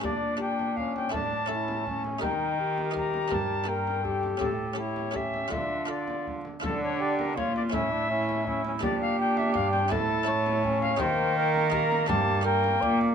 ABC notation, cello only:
X:1
M:3/4
L:1/8
Q:1/4=165
K:Dm
V:1 name="Cello" clef=bass
B,,6 | A,,6 | _E,6 | G,,6 |
A,,6 | D,4- D, z | D,4 B,,2 | A,,6 |
B,,4 G,,2 | A,,2 A,,4 | _E,6 | G,,4 B,,2 |]